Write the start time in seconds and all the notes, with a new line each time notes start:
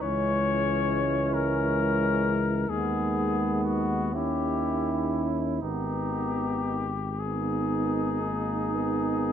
0.01 C#2 E3 G#3 C#4 C#5
1.34 A#4
2.68 D#2 D#3 G#3 B3 G#4
3.64 F#4
4.12 D#3 C#4 E4 G4
5.62 G#1 D#3 B3 D#4 G4
7.18 D#3 B3 D#4 G#4
8.20 A#3
8.72 B3